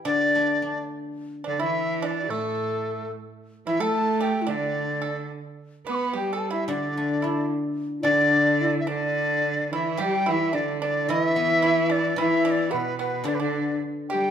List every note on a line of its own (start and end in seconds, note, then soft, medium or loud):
0.00 0.60 E3 medium
0.05 1.73 D3 soft
0.05 0.85 D4 medium
0.05 0.86 D4 medium
0.05 0.85 D5 loud
0.35 1.46 A3 soft
0.62 1.73 D4 soft
1.44 1.59 D3 medium
1.44 1.57 D4 medium
1.44 1.59 D4 medium
1.44 1.62 D5 medium
1.59 2.31 E3 medium
1.59 1.98 E4 medium
1.59 2.30 E4 medium
1.59 2.03 E5 medium
2.02 2.27 D4 medium
2.02 2.31 D5 medium
2.02 2.07 E5 medium
2.29 3.12 A2 medium
2.29 3.08 A3 medium
2.29 3.11 A4 medium
2.29 3.12 A4 medium
3.66 3.81 E3 medium
3.66 3.79 E4 medium
3.66 3.82 E4 medium
3.66 3.84 E5 medium
3.80 4.50 A3 medium
3.80 4.43 A4 medium
3.80 4.18 A4 medium
3.80 4.23 A5 medium
4.20 4.46 G4 medium
4.20 4.52 G5 medium
4.42 4.50 E4 soft
4.47 5.31 D3 medium
4.47 4.99 D4 medium
4.47 5.31 D4 medium
4.47 5.32 D5 medium
5.02 5.28 A4 medium
5.86 6.15 B3 medium
5.86 6.12 B4 medium
5.86 6.13 B4 medium
5.91 6.15 B5 medium
5.91 5.96 D6 medium
6.13 6.70 G3 medium
6.13 6.31 G4 medium
6.13 6.35 G4 medium
6.13 6.35 G5 medium
6.33 6.50 A4 medium
6.33 6.53 A5 medium
6.50 6.68 E4 medium
6.50 6.70 E4 medium
6.50 6.67 E5 medium
6.68 8.02 D3 medium
6.68 7.50 D3 medium
6.68 7.19 D4 medium
6.68 7.26 D4 medium
6.68 7.46 D5 medium
6.97 8.06 A3 soft
7.22 8.33 D4 soft
7.22 7.48 E4 medium
7.22 7.51 E4 medium
7.99 8.08 E4 medium
7.99 8.75 D5 loud
8.03 9.70 D3 medium
8.03 8.83 D3 medium
8.03 8.83 D4 medium
8.03 8.62 D4 medium
8.61 8.82 E4 medium
8.81 8.91 E4 soft
8.81 8.89 E5 medium
8.87 9.68 D3 medium
8.87 9.67 D4 medium
8.87 9.72 D4 medium
8.87 9.71 D5 loud
9.71 10.01 E3 medium
9.71 9.98 E4 medium
9.71 9.79 E4 soft
9.71 10.03 E5 medium
9.78 9.85 D4 soft
9.84 10.00 E4 medium
9.97 11.63 G3 medium
9.97 10.30 G3 medium
9.97 10.25 G4 medium
9.97 10.29 G4 medium
10.02 10.28 G5 loud
10.26 10.56 E3 medium
10.26 10.52 E4 medium
10.26 10.55 E4 medium
10.26 10.33 G5 medium
10.32 10.56 E5 loud
10.53 11.11 D3 medium
10.53 10.79 D4 medium
10.53 10.81 D4 medium
10.53 10.81 D5 medium
10.81 11.07 D4 medium
10.81 11.10 D4 medium
10.81 11.11 D5 medium
11.09 12.15 E3 medium
11.09 12.18 E3 loud
11.09 11.63 E4 medium
11.09 11.60 E4 medium
11.09 11.24 D#5 loud
11.24 11.93 E5 loud
11.36 12.45 B3 soft
11.62 11.88 E4 medium
11.62 12.71 E4 soft
11.62 12.14 E4 medium
11.90 12.15 D4 medium
11.90 12.20 D5 loud
12.16 13.81 E3 medium
12.16 12.75 E3 medium
12.16 12.73 E4 medium
12.16 12.43 E4 medium
12.16 12.47 E5 loud
12.45 12.70 D4 medium
12.45 12.52 E5 medium
12.51 12.72 D5 medium
12.71 13.27 B2 medium
12.71 12.97 B3 medium
12.71 12.98 B4 medium
12.99 13.24 B3 medium
12.99 13.24 B4 medium
12.99 13.29 B4 medium
13.24 14.31 D3 medium
13.24 13.40 D3 medium
13.24 13.39 D4 medium
13.28 13.36 D5 medium
13.35 13.42 B4 medium
13.40 13.80 D3 medium
13.40 13.79 D4 medium
13.40 13.80 D4 medium
13.40 13.82 D5 medium
14.09 14.31 G3 medium
14.09 14.31 G4 medium
14.09 14.31 G5 loud